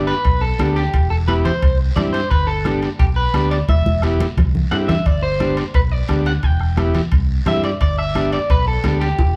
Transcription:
Already playing: fingered electric bass G1, transistor combo organ B3 D4 G4
0.07 clean electric guitar B4, high timbale, short guiro
0.25 fingered electric bass B1, bombo low, high conga, high timbale, long guiro
0.41 clean electric guitar A4
0.59 fingered electric bass D2, transistor combo organ B3 D4 G4, bombo rim, high conga, high timbale, low timbale, short guiro
0.76 clean electric guitar G4, high timbale, short guiro
0.93 fingered electric bass E1, bombo low, high conga, high timbale, long guiro
1.10 clean electric guitar A4
1.28 transistor combo organ B3 E4 G4, clean electric guitar B4, bombo rim, high conga, high timbale, short guiro
1.45 clean electric guitar C5, low conga, high timbale, short guiro
1.62 fingered electric bass C2, bombo low, high conga, high timbale, long guiro
1.96 fingered electric bass G2, transistor combo organ C4 E4 G4, clean electric guitar D5, bombo rim, high conga, low conga, high timbale, short guiro
2.13 clean electric guitar C5, high timbale, short guiro
2.30 fingered electric bass G1, clean electric guitar B4, bombo low, high conga, high timbale, long guiro
2.47 clean electric guitar A4
2.65 transistor combo organ B3 D4 G4, bombo rim, high conga, high timbale, short guiro
2.83 high timbale, short guiro
2.99 fingered electric bass B1, clean electric guitar G4, bombo low, high conga, high timbale, long guiro
3.16 clean electric guitar B4
3.34 fingered electric bass D2, transistor combo organ B3 D4 G4, bombo rim, high conga, high timbale, low timbale, short guiro
3.51 clean electric guitar D5, high timbale, short guiro
3.68 fingered electric bass E1, clean electric guitar E5, bombo low, high conga, high timbale, long guiro
3.86 high conga
4.02 transistor combo organ B3 E4 G4, bombo rim, high conga, high timbale, short guiro
4.20 high conga, high timbale, short guiro
4.37 fingered electric bass C2, bombo low, low conga, high timbale, long guiro
4.55 low conga
4.71 fingered electric bass G2, transistor combo organ C4 E4 G4, clean electric guitar F#5, bombo rim, high timbale, low timbale, short guiro
4.88 clean electric guitar E5, low conga, high timbale, short guiro
5.06 fingered electric bass G1, clean electric guitar D5, bombo low, high conga, high timbale, long guiro
5.23 clean electric guitar C5
5.40 transistor combo organ B3 D4 G4, bombo rim, high conga, high timbale, short guiro
5.57 high timbale, short guiro
5.74 fingered electric bass B1, clean electric guitar B4, bombo low, high conga, high timbale, long guiro
5.92 clean electric guitar D5
6.09 fingered electric bass D2, transistor combo organ B3 D4 G4, bombo rim, high conga, high timbale, low timbale, short guiro
6.26 clean electric guitar F#5, high timbale, short guiro
6.43 fingered electric bass E1, clean electric guitar G5, bombo low, high conga, high timbale, long guiro
6.60 bombo rim
6.77 transistor combo organ B3 E4 G4, bombo rim, high conga, high timbale, short guiro
6.95 low conga, high timbale, short guiro
7.12 fingered electric bass C2, bombo low, high conga, high timbale, long guiro
7.46 fingered electric bass G2, transistor combo organ C4 E4 G4, clean electric guitar E5, bombo rim, high conga, low conga, high timbale, low timbale, short guiro
7.63 clean electric guitar D5, high timbale, short guiro
7.81 fingered electric bass G1, clean electric guitar D5, bombo low, high conga, high timbale, long guiro
7.98 clean electric guitar E5, bombo rim
8.15 transistor combo organ B3 D4 G4, bombo rim, high conga, high timbale, short guiro
8.32 clean electric guitar D5, high timbale, short guiro
8.50 fingered electric bass B1, clean electric guitar B4, bombo low, high conga, high timbale, long guiro
8.68 clean electric guitar A4
8.84 fingered electric bass D2, transistor combo organ B3 D4 G4, bombo rim, high conga, high timbale, low timbale, short guiro
9.01 clean electric guitar G4, high timbale, short guiro
9.18 fingered electric bass E1, bombo low, high conga, high timbale, long guiro

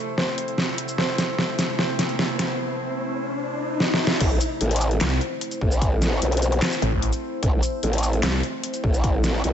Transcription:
Already playing: ambient pad C3 A3 E4 C5, riser
0.18 grand piano C4 C5, snare
0.38 closed hi-hat
0.48 closed hi-hat
0.58 snare
0.78 closed hi-hat
0.88 shaker
0.98 grand piano C4 C5, ambient pad C5, snare
1.18 snare, closed hi-hat
1.39 snare
1.59 snare, closed hi-hat, shaker
1.79 grand piano C4 C5, snare
1.99 snare, closed hi-hat
2.09 closed hi-hat
2.19 snare
2.39 snare, closed hi-hat
3.80 snare
3.94 snare
4.07 snare
4.20 wobble bass A1, ambient pad A3 C4 E4 C5, kick, closed hi-hat, crash
4.41 closed hi-hat, shaker
4.61 wobble bass A1, closed hi-hat
4.71 closed hi-hat
4.76 closed hi-hat
4.81 closed hi-hat, shaker
4.91 closed hi-hat
5.01 detuned saw bass C2, snare, clap, closed hi-hat
5.21 closed hi-hat
5.41 closed hi-hat
5.51 closed hi-hat, shaker
5.61 wobble bass A1, kick
5.72 shaker
5.82 kick, closed hi-hat
6.02 snare, closed hi-hat, shaker
6.22 wobble bass B1, closed hi-hat
6.32 closed hi-hat
6.37 closed hi-hat
6.42 closed hi-hat, shaker
6.52 closed hi-hat
6.62 snare, clap, closed hi-hat
6.72 shaker
6.82 detuned saw bass A1, closed hi-hat
6.92 kick
7.02 closed hi-hat
7.13 closed hi-hat, shaker
7.43 wobble bass A1, kick, closed hi-hat
7.63 closed hi-hat, shaker
7.83 wobble bass A1, closed hi-hat
7.93 closed hi-hat
7.98 closed hi-hat
8.03 closed hi-hat, shaker
8.13 closed hi-hat
8.23 detuned saw bass C2, snare, clap, closed hi-hat
8.43 closed hi-hat
8.64 closed hi-hat
8.74 closed hi-hat, shaker
8.84 wobble bass A1, kick
8.94 shaker
9.04 kick, closed hi-hat
9.24 snare, closed hi-hat, shaker
9.44 wobble bass B1, closed hi-hat

